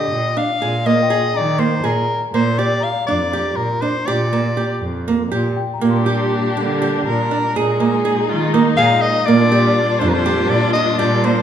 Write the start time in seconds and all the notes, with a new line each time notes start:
Already playing: G4 D#5 G5
0.11 A#2
0.37 D4 F5
0.62 A#2 G#4
0.86 A#3 D#5
1.02 G5
1.10 G#4
1.34 D#3 D5 A#5
1.58 A#3 C5
1.84 A#2 G#4 A#4
2.32 A#2 A#3 C5
2.59 G4 D5
2.81 F5 A#5
3.07 F2 D4 D5
3.33 G4
3.56 A#2 A#4
3.82 D4 C5
4.06 A#2 G4 D5
4.33 A#3
4.57 G4
4.80 F2
5.08 A#3
5.31 A#2 G4
5.56 G5
5.74 A#5
5.81 A#2 G3 A#3 D4 G4
5.91 C6
6.06 G4
6.57 D3 D4
6.82 G4
7.07 A#2 A#4
7.31 D4
7.56 A#2 G#3 A#3 D#4 G#4
7.80 A#3
8.05 G#4
8.29 D#3 F4
8.54 A#3 D#4
8.77 A#2 G#4 F5
9.01 D#5
9.26 A#2 G3 A#3 D4 F4 D5
9.52 G4
9.99 F2 D4 C5
10.09 A#4
10.14 C5
10.26 G4
10.49 A#2 D5
10.73 D4 D#5
10.98 A#2 G4 D5
11.24 A#3 C5